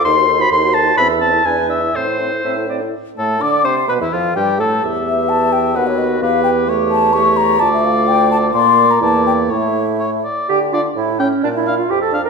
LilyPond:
<<
  \new Staff \with { instrumentName = "Flute" } { \time 2/4 \key a \minor \tempo 4 = 128 a'16 bis'16 a'16 bis'16 a'16 bis'16 a'16 bis'16 | c''16 a'16 c''16 a'16 d''16 e''16 d''16 e''16 | c''16 a'16 c''16 a'16 c''16 a'16 c''16 a'16 | r8 a''8 d'''8 c'''8 |
b''16 e''16 f''8 g''8 a''8 | r8 e''8 a''8 g''8 | fis''16 cis''16 dis''8 f''8 g''8 | \key d \minor r8 a''8 cis'''8 bes''8 |
a''16 e''16 f''8 g''8 a''8 | c'''8. bes''16 a''8 g''8 | e''4. r8 | g''8 f''8 e''8 cis''8 |
d''16 e''8 f''16 g''16 a''8 bes''16 | }
  \new Staff \with { instrumentName = "Oboe" } { \time 2/4 \key a \minor bis''8. b''16 bis''8 a''8 | b''8 a''8 gis''8 e''8 | c''4. r8 | r8 a'8 d''8 c''8 |
b'16 e'16 f'8 g'8 a'8 | e''2 | b'4 b'4 | \key d \minor cis''4 cis''4 |
d''2 | d''4 d''4 | cis''4 cis''8 d''8 | r8 d''16 r8. g''16 r16 |
r8 f''16 r8. f''16 r16 | }
  \new Staff \with { instrumentName = "Clarinet" } { \time 2/4 \key a \minor bis'2 | e''4 b'4 | c''4 e''8 d''8 | r8 a'8 d''8 c''8 |
b'16 e'16 f'8 g'8 a'8 | g'2 | fis'4 g'4 | \key d \minor g'4 g'4 |
f'2 | f'4 e'4 | e'4. r8 | g'8 f'8 e'8 cis'8 |
d'16 e'8 f'16 g'16 a'8 bes'16 | }
  \new Staff \with { instrumentName = "French horn" } { \time 2/4 \key a \minor dis'16 fis'16 dis'16 fis'16 dis'16 fis'16 dis'16 fis'16 | c'16 e'16 c'16 e'16 d'16 e'16 d'16 e'16 | c'16 e'16 c'16 e'16 c'16 e'16 c'16 e'16 | r8 a8 d'8 c'8 |
b16 e16 f8 g8 a8 | b2 | b4 b4 | \key d \minor a4 a4 |
a2 | bes4 bes4 | a4. r8 | r8 d'16 r8. cis'16 r16 |
r8 d'16 r8. d'16 r16 | }
  \new Staff \with { instrumentName = "Bassoon" } { \clef bass \time 2/4 \key a \minor dis,4 dis,4 | e,4 e,4 | a,4 a,4 | r8 a,8 d8 c8 |
b,16 e,16 f,8 g,8 a,8 | e,2 | dis,4 e,4~ | \key d \minor e,2 |
d,2 | bes,4 e,4 | a,4. r8 | d4 a,4 |
bes,4 f,4 | }
>>